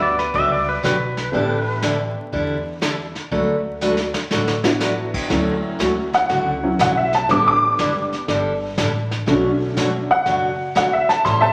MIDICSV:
0, 0, Header, 1, 7, 480
1, 0, Start_track
1, 0, Key_signature, 2, "major"
1, 0, Tempo, 495458
1, 1291, Time_signature, 4, 2, 24, 8
1, 11169, End_track
2, 0, Start_track
2, 0, Title_t, "Pedal steel guitar"
2, 0, Program_c, 0, 26
2, 0, Note_on_c, 0, 71, 67
2, 0, Note_on_c, 0, 78, 82
2, 1096, Note_off_c, 0, 71, 0
2, 1099, Note_off_c, 0, 78, 0
2, 11169, End_track
3, 0, Start_track
3, 0, Title_t, "Electric slide guitar"
3, 0, Program_c, 1, 29
3, 23, Note_on_c, 1, 74, 82
3, 172, Note_off_c, 1, 74, 0
3, 182, Note_on_c, 1, 71, 78
3, 332, Note_off_c, 1, 71, 0
3, 343, Note_on_c, 1, 76, 88
3, 492, Note_off_c, 1, 76, 0
3, 504, Note_on_c, 1, 74, 77
3, 652, Note_off_c, 1, 74, 0
3, 666, Note_on_c, 1, 71, 83
3, 814, Note_off_c, 1, 71, 0
3, 827, Note_on_c, 1, 71, 87
3, 1751, Note_off_c, 1, 71, 0
3, 11169, End_track
4, 0, Start_track
4, 0, Title_t, "Honky-tonk piano"
4, 0, Program_c, 2, 3
4, 0, Note_on_c, 2, 55, 62
4, 0, Note_on_c, 2, 59, 60
4, 0, Note_on_c, 2, 62, 59
4, 0, Note_on_c, 2, 66, 66
4, 711, Note_off_c, 2, 55, 0
4, 714, Note_off_c, 2, 59, 0
4, 717, Note_off_c, 2, 62, 0
4, 719, Note_off_c, 2, 66, 0
4, 1277, Note_on_c, 2, 57, 58
4, 1285, Note_on_c, 2, 59, 50
4, 1290, Note_on_c, 2, 62, 49
4, 1296, Note_on_c, 2, 67, 55
4, 2633, Note_off_c, 2, 57, 0
4, 2636, Note_off_c, 2, 59, 0
4, 2639, Note_off_c, 2, 62, 0
4, 2642, Note_off_c, 2, 67, 0
4, 4489, Note_on_c, 2, 59, 66
4, 4493, Note_on_c, 2, 62, 58
4, 4502, Note_on_c, 2, 64, 63
4, 4505, Note_on_c, 2, 66, 69
4, 5099, Note_off_c, 2, 59, 0
4, 5101, Note_off_c, 2, 62, 0
4, 5105, Note_off_c, 2, 64, 0
4, 5107, Note_off_c, 2, 66, 0
4, 5134, Note_on_c, 2, 52, 52
4, 5138, Note_on_c, 2, 54, 50
4, 5142, Note_on_c, 2, 61, 59
4, 5952, Note_on_c, 2, 78, 89
4, 6406, Note_off_c, 2, 52, 0
4, 6411, Note_off_c, 2, 54, 0
4, 6414, Note_off_c, 2, 61, 0
4, 6421, Note_on_c, 2, 52, 45
4, 6426, Note_on_c, 2, 54, 46
4, 6428, Note_on_c, 2, 61, 52
4, 6561, Note_off_c, 2, 52, 0
4, 6564, Note_off_c, 2, 54, 0
4, 6565, Note_off_c, 2, 61, 0
4, 6566, Note_off_c, 2, 78, 0
4, 6598, Note_on_c, 2, 78, 84
4, 6743, Note_off_c, 2, 78, 0
4, 6755, Note_on_c, 2, 76, 84
4, 6902, Note_off_c, 2, 76, 0
4, 6923, Note_on_c, 2, 81, 96
4, 7059, Note_on_c, 2, 50, 50
4, 7066, Note_off_c, 2, 81, 0
4, 7066, Note_on_c, 2, 55, 49
4, 7069, Note_on_c, 2, 59, 59
4, 7081, Note_on_c, 2, 86, 93
4, 7225, Note_off_c, 2, 86, 0
4, 7241, Note_on_c, 2, 86, 113
4, 8161, Note_off_c, 2, 86, 0
4, 8940, Note_off_c, 2, 50, 0
4, 8943, Note_off_c, 2, 55, 0
4, 8944, Note_off_c, 2, 59, 0
4, 8986, Note_on_c, 2, 50, 59
4, 8987, Note_on_c, 2, 57, 51
4, 8995, Note_on_c, 2, 61, 62
4, 9747, Note_off_c, 2, 50, 0
4, 9748, Note_off_c, 2, 57, 0
4, 9752, Note_off_c, 2, 61, 0
4, 9793, Note_on_c, 2, 78, 99
4, 10405, Note_off_c, 2, 78, 0
4, 10433, Note_on_c, 2, 78, 89
4, 10580, Note_off_c, 2, 78, 0
4, 10590, Note_on_c, 2, 76, 90
4, 10738, Note_off_c, 2, 76, 0
4, 10744, Note_on_c, 2, 81, 102
4, 10895, Note_off_c, 2, 81, 0
4, 10896, Note_on_c, 2, 84, 86
4, 11049, Note_on_c, 2, 76, 95
4, 11050, Note_off_c, 2, 84, 0
4, 11061, Note_on_c, 2, 81, 111
4, 11169, Note_off_c, 2, 76, 0
4, 11169, Note_off_c, 2, 81, 0
4, 11169, End_track
5, 0, Start_track
5, 0, Title_t, "Steel-string acoustic guitar"
5, 0, Program_c, 3, 25
5, 326, Note_on_c, 3, 50, 63
5, 326, Note_on_c, 3, 54, 55
5, 327, Note_on_c, 3, 59, 60
5, 330, Note_on_c, 3, 62, 62
5, 336, Note_on_c, 3, 67, 62
5, 551, Note_off_c, 3, 50, 0
5, 552, Note_off_c, 3, 54, 0
5, 552, Note_off_c, 3, 59, 0
5, 553, Note_off_c, 3, 62, 0
5, 556, Note_off_c, 3, 67, 0
5, 802, Note_on_c, 3, 50, 65
5, 807, Note_on_c, 3, 59, 62
5, 809, Note_on_c, 3, 54, 66
5, 809, Note_on_c, 3, 62, 74
5, 818, Note_on_c, 3, 67, 77
5, 924, Note_off_c, 3, 50, 0
5, 927, Note_off_c, 3, 59, 0
5, 928, Note_off_c, 3, 54, 0
5, 928, Note_off_c, 3, 62, 0
5, 932, Note_off_c, 3, 67, 0
5, 1289, Note_on_c, 3, 50, 54
5, 1298, Note_on_c, 3, 55, 61
5, 1302, Note_on_c, 3, 62, 59
5, 1303, Note_on_c, 3, 64, 61
5, 1310, Note_on_c, 3, 69, 72
5, 1513, Note_off_c, 3, 50, 0
5, 1518, Note_off_c, 3, 55, 0
5, 1520, Note_off_c, 3, 62, 0
5, 1520, Note_off_c, 3, 64, 0
5, 1524, Note_off_c, 3, 69, 0
5, 1773, Note_on_c, 3, 55, 68
5, 1776, Note_on_c, 3, 50, 65
5, 1779, Note_on_c, 3, 62, 77
5, 1782, Note_on_c, 3, 64, 81
5, 1784, Note_on_c, 3, 69, 84
5, 1891, Note_off_c, 3, 55, 0
5, 1892, Note_off_c, 3, 50, 0
5, 1894, Note_off_c, 3, 62, 0
5, 1895, Note_off_c, 3, 64, 0
5, 1896, Note_off_c, 3, 69, 0
5, 2253, Note_on_c, 3, 50, 52
5, 2255, Note_on_c, 3, 55, 55
5, 2260, Note_on_c, 3, 62, 60
5, 2261, Note_on_c, 3, 64, 61
5, 2263, Note_on_c, 3, 69, 55
5, 2476, Note_off_c, 3, 50, 0
5, 2477, Note_off_c, 3, 55, 0
5, 2479, Note_off_c, 3, 62, 0
5, 2480, Note_off_c, 3, 64, 0
5, 2481, Note_off_c, 3, 69, 0
5, 2727, Note_on_c, 3, 50, 62
5, 2732, Note_on_c, 3, 55, 71
5, 2734, Note_on_c, 3, 62, 68
5, 2737, Note_on_c, 3, 64, 69
5, 2742, Note_on_c, 3, 69, 75
5, 2848, Note_off_c, 3, 50, 0
5, 2851, Note_off_c, 3, 55, 0
5, 2852, Note_off_c, 3, 62, 0
5, 2853, Note_off_c, 3, 64, 0
5, 2855, Note_off_c, 3, 69, 0
5, 3212, Note_on_c, 3, 50, 58
5, 3212, Note_on_c, 3, 54, 60
5, 3212, Note_on_c, 3, 62, 65
5, 3218, Note_on_c, 3, 57, 65
5, 3218, Note_on_c, 3, 66, 60
5, 3222, Note_on_c, 3, 71, 58
5, 3436, Note_off_c, 3, 50, 0
5, 3436, Note_off_c, 3, 54, 0
5, 3436, Note_off_c, 3, 62, 0
5, 3439, Note_off_c, 3, 57, 0
5, 3439, Note_off_c, 3, 66, 0
5, 3441, Note_off_c, 3, 71, 0
5, 3694, Note_on_c, 3, 50, 67
5, 3694, Note_on_c, 3, 54, 65
5, 3698, Note_on_c, 3, 57, 69
5, 3701, Note_on_c, 3, 62, 70
5, 3702, Note_on_c, 3, 66, 85
5, 3706, Note_on_c, 3, 71, 81
5, 3812, Note_off_c, 3, 50, 0
5, 3812, Note_off_c, 3, 54, 0
5, 3814, Note_off_c, 3, 57, 0
5, 3816, Note_off_c, 3, 62, 0
5, 3816, Note_off_c, 3, 66, 0
5, 3818, Note_off_c, 3, 71, 0
5, 4177, Note_on_c, 3, 50, 60
5, 4179, Note_on_c, 3, 54, 47
5, 4182, Note_on_c, 3, 57, 52
5, 4183, Note_on_c, 3, 66, 60
5, 4184, Note_on_c, 3, 62, 57
5, 4187, Note_on_c, 3, 71, 52
5, 4399, Note_off_c, 3, 50, 0
5, 4400, Note_off_c, 3, 54, 0
5, 4402, Note_off_c, 3, 57, 0
5, 4402, Note_off_c, 3, 66, 0
5, 4403, Note_off_c, 3, 62, 0
5, 4404, Note_off_c, 3, 71, 0
5, 4652, Note_on_c, 3, 50, 66
5, 4653, Note_on_c, 3, 54, 75
5, 4658, Note_on_c, 3, 57, 69
5, 4658, Note_on_c, 3, 62, 71
5, 4661, Note_on_c, 3, 66, 59
5, 4661, Note_on_c, 3, 71, 67
5, 4772, Note_off_c, 3, 50, 0
5, 4772, Note_off_c, 3, 54, 0
5, 4775, Note_off_c, 3, 57, 0
5, 4775, Note_off_c, 3, 62, 0
5, 4776, Note_off_c, 3, 71, 0
5, 4777, Note_off_c, 3, 66, 0
5, 5133, Note_on_c, 3, 50, 64
5, 5133, Note_on_c, 3, 54, 57
5, 5135, Note_on_c, 3, 57, 70
5, 5142, Note_on_c, 3, 66, 62
5, 5144, Note_on_c, 3, 61, 67
5, 5357, Note_off_c, 3, 50, 0
5, 5358, Note_off_c, 3, 54, 0
5, 5359, Note_off_c, 3, 57, 0
5, 5362, Note_off_c, 3, 66, 0
5, 5363, Note_off_c, 3, 61, 0
5, 5607, Note_on_c, 3, 50, 69
5, 5613, Note_on_c, 3, 54, 67
5, 5615, Note_on_c, 3, 57, 70
5, 5616, Note_on_c, 3, 61, 77
5, 5621, Note_on_c, 3, 66, 82
5, 5730, Note_off_c, 3, 50, 0
5, 5733, Note_off_c, 3, 54, 0
5, 5734, Note_off_c, 3, 57, 0
5, 5734, Note_off_c, 3, 61, 0
5, 5737, Note_off_c, 3, 66, 0
5, 6093, Note_on_c, 3, 50, 53
5, 6099, Note_on_c, 3, 54, 52
5, 6101, Note_on_c, 3, 61, 58
5, 6102, Note_on_c, 3, 57, 53
5, 6106, Note_on_c, 3, 66, 58
5, 6318, Note_off_c, 3, 50, 0
5, 6321, Note_off_c, 3, 54, 0
5, 6322, Note_off_c, 3, 61, 0
5, 6323, Note_off_c, 3, 57, 0
5, 6325, Note_off_c, 3, 66, 0
5, 6583, Note_on_c, 3, 50, 65
5, 6591, Note_on_c, 3, 54, 68
5, 6592, Note_on_c, 3, 61, 66
5, 6593, Note_on_c, 3, 57, 70
5, 6597, Note_on_c, 3, 66, 70
5, 6698, Note_off_c, 3, 50, 0
5, 6702, Note_off_c, 3, 54, 0
5, 6703, Note_off_c, 3, 61, 0
5, 6704, Note_off_c, 3, 57, 0
5, 6705, Note_off_c, 3, 66, 0
5, 7063, Note_on_c, 3, 50, 62
5, 7069, Note_on_c, 3, 55, 59
5, 7071, Note_on_c, 3, 62, 57
5, 7075, Note_on_c, 3, 64, 62
5, 7078, Note_on_c, 3, 69, 61
5, 7283, Note_off_c, 3, 50, 0
5, 7286, Note_off_c, 3, 55, 0
5, 7287, Note_off_c, 3, 62, 0
5, 7289, Note_off_c, 3, 64, 0
5, 7291, Note_off_c, 3, 69, 0
5, 7549, Note_on_c, 3, 50, 69
5, 7549, Note_on_c, 3, 55, 77
5, 7555, Note_on_c, 3, 62, 80
5, 7557, Note_on_c, 3, 64, 86
5, 7563, Note_on_c, 3, 69, 80
5, 7662, Note_off_c, 3, 50, 0
5, 7662, Note_off_c, 3, 55, 0
5, 7665, Note_off_c, 3, 62, 0
5, 7666, Note_off_c, 3, 64, 0
5, 7668, Note_off_c, 3, 69, 0
5, 8028, Note_on_c, 3, 50, 53
5, 8030, Note_on_c, 3, 55, 54
5, 8032, Note_on_c, 3, 62, 52
5, 8033, Note_on_c, 3, 64, 55
5, 8035, Note_on_c, 3, 69, 59
5, 8246, Note_off_c, 3, 50, 0
5, 8247, Note_off_c, 3, 55, 0
5, 8248, Note_off_c, 3, 62, 0
5, 8248, Note_off_c, 3, 64, 0
5, 8249, Note_off_c, 3, 69, 0
5, 8503, Note_on_c, 3, 50, 74
5, 8503, Note_on_c, 3, 55, 69
5, 8506, Note_on_c, 3, 64, 67
5, 8508, Note_on_c, 3, 62, 61
5, 8517, Note_on_c, 3, 69, 75
5, 8618, Note_off_c, 3, 50, 0
5, 8618, Note_off_c, 3, 55, 0
5, 8620, Note_off_c, 3, 64, 0
5, 8621, Note_off_c, 3, 62, 0
5, 8625, Note_off_c, 3, 69, 0
5, 8974, Note_on_c, 3, 47, 63
5, 8980, Note_on_c, 3, 54, 58
5, 8982, Note_on_c, 3, 62, 58
5, 8984, Note_on_c, 3, 57, 56
5, 8985, Note_on_c, 3, 66, 71
5, 9198, Note_off_c, 3, 47, 0
5, 9201, Note_off_c, 3, 54, 0
5, 9202, Note_off_c, 3, 62, 0
5, 9204, Note_off_c, 3, 57, 0
5, 9204, Note_off_c, 3, 66, 0
5, 9461, Note_on_c, 3, 47, 69
5, 9463, Note_on_c, 3, 54, 73
5, 9468, Note_on_c, 3, 57, 82
5, 9471, Note_on_c, 3, 62, 69
5, 9472, Note_on_c, 3, 66, 84
5, 9577, Note_off_c, 3, 47, 0
5, 9578, Note_off_c, 3, 54, 0
5, 9581, Note_off_c, 3, 57, 0
5, 9582, Note_off_c, 3, 62, 0
5, 9583, Note_off_c, 3, 66, 0
5, 9938, Note_on_c, 3, 47, 57
5, 9946, Note_on_c, 3, 57, 54
5, 9946, Note_on_c, 3, 62, 62
5, 9947, Note_on_c, 3, 54, 55
5, 9948, Note_on_c, 3, 66, 63
5, 10160, Note_off_c, 3, 47, 0
5, 10164, Note_off_c, 3, 54, 0
5, 10164, Note_off_c, 3, 57, 0
5, 10164, Note_off_c, 3, 62, 0
5, 10165, Note_off_c, 3, 66, 0
5, 10416, Note_on_c, 3, 54, 75
5, 10417, Note_on_c, 3, 47, 63
5, 10426, Note_on_c, 3, 62, 67
5, 10427, Note_on_c, 3, 57, 62
5, 10429, Note_on_c, 3, 66, 85
5, 10534, Note_off_c, 3, 47, 0
5, 10534, Note_off_c, 3, 54, 0
5, 10539, Note_off_c, 3, 57, 0
5, 10539, Note_off_c, 3, 62, 0
5, 10540, Note_off_c, 3, 66, 0
5, 10891, Note_on_c, 3, 52, 52
5, 10894, Note_on_c, 3, 55, 55
5, 10902, Note_on_c, 3, 64, 59
5, 10902, Note_on_c, 3, 69, 69
5, 10903, Note_on_c, 3, 61, 56
5, 11116, Note_off_c, 3, 52, 0
5, 11117, Note_off_c, 3, 55, 0
5, 11121, Note_off_c, 3, 61, 0
5, 11121, Note_off_c, 3, 64, 0
5, 11121, Note_off_c, 3, 69, 0
5, 11169, End_track
6, 0, Start_track
6, 0, Title_t, "Upright bass"
6, 0, Program_c, 4, 32
6, 0, Note_on_c, 4, 38, 77
6, 262, Note_off_c, 4, 38, 0
6, 333, Note_on_c, 4, 37, 79
6, 740, Note_off_c, 4, 37, 0
6, 809, Note_on_c, 4, 35, 95
6, 1218, Note_off_c, 4, 35, 0
6, 1290, Note_on_c, 4, 33, 89
6, 2059, Note_off_c, 4, 33, 0
6, 2255, Note_on_c, 4, 40, 77
6, 3023, Note_off_c, 4, 40, 0
6, 3214, Note_on_c, 4, 38, 85
6, 3983, Note_off_c, 4, 38, 0
6, 4178, Note_on_c, 4, 33, 74
6, 4946, Note_off_c, 4, 33, 0
6, 5135, Note_on_c, 4, 38, 94
6, 5520, Note_off_c, 4, 38, 0
6, 5618, Note_on_c, 4, 38, 72
6, 6026, Note_off_c, 4, 38, 0
6, 6099, Note_on_c, 4, 37, 71
6, 6506, Note_off_c, 4, 37, 0
6, 6581, Note_on_c, 4, 35, 90
6, 6987, Note_off_c, 4, 35, 0
6, 7062, Note_on_c, 4, 33, 90
6, 7444, Note_off_c, 4, 33, 0
6, 7547, Note_on_c, 4, 30, 65
6, 7951, Note_off_c, 4, 30, 0
6, 8022, Note_on_c, 4, 31, 72
6, 8428, Note_off_c, 4, 31, 0
6, 8503, Note_on_c, 4, 33, 84
6, 8909, Note_off_c, 4, 33, 0
6, 8985, Note_on_c, 4, 35, 95
6, 9749, Note_off_c, 4, 35, 0
6, 9939, Note_on_c, 4, 30, 77
6, 10704, Note_off_c, 4, 30, 0
6, 10901, Note_on_c, 4, 33, 95
6, 11169, Note_off_c, 4, 33, 0
6, 11169, End_track
7, 0, Start_track
7, 0, Title_t, "Drums"
7, 181, Note_on_c, 9, 38, 38
7, 278, Note_off_c, 9, 38, 0
7, 332, Note_on_c, 9, 36, 34
7, 336, Note_on_c, 9, 25, 47
7, 429, Note_off_c, 9, 36, 0
7, 816, Note_on_c, 9, 38, 64
7, 816, Note_on_c, 9, 44, 56
7, 913, Note_off_c, 9, 38, 0
7, 913, Note_off_c, 9, 44, 0
7, 1135, Note_on_c, 9, 38, 42
7, 1232, Note_off_c, 9, 38, 0
7, 1290, Note_off_c, 9, 25, 0
7, 1290, Note_on_c, 9, 25, 52
7, 1291, Note_on_c, 9, 36, 34
7, 1387, Note_off_c, 9, 36, 0
7, 1766, Note_on_c, 9, 38, 72
7, 1766, Note_on_c, 9, 44, 55
7, 1863, Note_off_c, 9, 38, 0
7, 1863, Note_off_c, 9, 44, 0
7, 2250, Note_off_c, 9, 25, 0
7, 2250, Note_on_c, 9, 25, 57
7, 2252, Note_on_c, 9, 36, 31
7, 2348, Note_off_c, 9, 36, 0
7, 2731, Note_on_c, 9, 38, 67
7, 2731, Note_on_c, 9, 44, 56
7, 2828, Note_off_c, 9, 38, 0
7, 2828, Note_off_c, 9, 44, 0
7, 3055, Note_on_c, 9, 38, 38
7, 3152, Note_off_c, 9, 38, 0
7, 3207, Note_off_c, 9, 25, 0
7, 3207, Note_on_c, 9, 25, 46
7, 3211, Note_on_c, 9, 36, 36
7, 3307, Note_off_c, 9, 36, 0
7, 3693, Note_on_c, 9, 44, 58
7, 3790, Note_off_c, 9, 44, 0
7, 3844, Note_on_c, 9, 38, 54
7, 3941, Note_off_c, 9, 38, 0
7, 4011, Note_on_c, 9, 38, 68
7, 4108, Note_off_c, 9, 38, 0
7, 4172, Note_on_c, 9, 38, 61
7, 4269, Note_off_c, 9, 38, 0
7, 4335, Note_on_c, 9, 38, 59
7, 4432, Note_off_c, 9, 38, 0
7, 4495, Note_on_c, 9, 38, 77
7, 4592, Note_off_c, 9, 38, 0
7, 4654, Note_on_c, 9, 38, 58
7, 4654, Note_on_c, 9, 44, 61
7, 4751, Note_off_c, 9, 38, 0
7, 4751, Note_off_c, 9, 44, 0
7, 4979, Note_on_c, 9, 49, 77
7, 4980, Note_on_c, 9, 36, 66
7, 5076, Note_off_c, 9, 49, 0
7, 5077, Note_off_c, 9, 36, 0
7, 5135, Note_off_c, 9, 25, 0
7, 5135, Note_on_c, 9, 25, 51
7, 5135, Note_on_c, 9, 36, 21
7, 5135, Note_on_c, 9, 38, 46
7, 5231, Note_off_c, 9, 36, 0
7, 5232, Note_off_c, 9, 38, 0
7, 5616, Note_on_c, 9, 36, 24
7, 5618, Note_on_c, 9, 38, 69
7, 5618, Note_on_c, 9, 44, 53
7, 5713, Note_off_c, 9, 36, 0
7, 5715, Note_off_c, 9, 38, 0
7, 5715, Note_off_c, 9, 44, 0
7, 5942, Note_on_c, 9, 38, 35
7, 6038, Note_off_c, 9, 38, 0
7, 6096, Note_off_c, 9, 25, 0
7, 6096, Note_on_c, 9, 25, 48
7, 6096, Note_on_c, 9, 36, 17
7, 6096, Note_on_c, 9, 38, 45
7, 6193, Note_off_c, 9, 36, 0
7, 6193, Note_off_c, 9, 38, 0
7, 6578, Note_on_c, 9, 36, 21
7, 6580, Note_on_c, 9, 38, 66
7, 6580, Note_on_c, 9, 44, 62
7, 6675, Note_off_c, 9, 36, 0
7, 6677, Note_off_c, 9, 38, 0
7, 6677, Note_off_c, 9, 44, 0
7, 6904, Note_on_c, 9, 38, 40
7, 7001, Note_off_c, 9, 38, 0
7, 7060, Note_on_c, 9, 36, 26
7, 7063, Note_off_c, 9, 25, 0
7, 7063, Note_on_c, 9, 25, 49
7, 7063, Note_on_c, 9, 38, 45
7, 7157, Note_off_c, 9, 36, 0
7, 7160, Note_off_c, 9, 38, 0
7, 7542, Note_on_c, 9, 36, 21
7, 7544, Note_on_c, 9, 38, 76
7, 7544, Note_on_c, 9, 44, 54
7, 7639, Note_off_c, 9, 36, 0
7, 7641, Note_off_c, 9, 38, 0
7, 7641, Note_off_c, 9, 44, 0
7, 7871, Note_on_c, 9, 38, 38
7, 7968, Note_off_c, 9, 38, 0
7, 8023, Note_on_c, 9, 36, 21
7, 8024, Note_off_c, 9, 25, 0
7, 8024, Note_on_c, 9, 25, 60
7, 8024, Note_on_c, 9, 38, 47
7, 8120, Note_off_c, 9, 36, 0
7, 8121, Note_off_c, 9, 38, 0
7, 8503, Note_on_c, 9, 36, 26
7, 8503, Note_on_c, 9, 38, 71
7, 8503, Note_on_c, 9, 44, 57
7, 8600, Note_off_c, 9, 36, 0
7, 8600, Note_off_c, 9, 38, 0
7, 8600, Note_off_c, 9, 44, 0
7, 8829, Note_on_c, 9, 38, 41
7, 8926, Note_off_c, 9, 38, 0
7, 8983, Note_on_c, 9, 36, 29
7, 8984, Note_off_c, 9, 25, 0
7, 8984, Note_on_c, 9, 25, 59
7, 8984, Note_on_c, 9, 38, 45
7, 9080, Note_off_c, 9, 36, 0
7, 9080, Note_off_c, 9, 38, 0
7, 9461, Note_on_c, 9, 36, 25
7, 9464, Note_on_c, 9, 38, 68
7, 9464, Note_on_c, 9, 44, 69
7, 9558, Note_off_c, 9, 36, 0
7, 9561, Note_off_c, 9, 38, 0
7, 9561, Note_off_c, 9, 44, 0
7, 9939, Note_off_c, 9, 25, 0
7, 9939, Note_on_c, 9, 25, 41
7, 9939, Note_on_c, 9, 38, 47
7, 9940, Note_on_c, 9, 36, 20
7, 10036, Note_off_c, 9, 38, 0
7, 10037, Note_off_c, 9, 36, 0
7, 10419, Note_on_c, 9, 36, 22
7, 10421, Note_on_c, 9, 38, 70
7, 10421, Note_on_c, 9, 44, 50
7, 10516, Note_off_c, 9, 36, 0
7, 10518, Note_off_c, 9, 38, 0
7, 10518, Note_off_c, 9, 44, 0
7, 10745, Note_on_c, 9, 38, 42
7, 10842, Note_off_c, 9, 38, 0
7, 10898, Note_on_c, 9, 36, 21
7, 10902, Note_off_c, 9, 25, 0
7, 10902, Note_on_c, 9, 25, 53
7, 10902, Note_on_c, 9, 38, 49
7, 10995, Note_off_c, 9, 36, 0
7, 10999, Note_off_c, 9, 38, 0
7, 11169, Note_off_c, 9, 25, 0
7, 11169, End_track
0, 0, End_of_file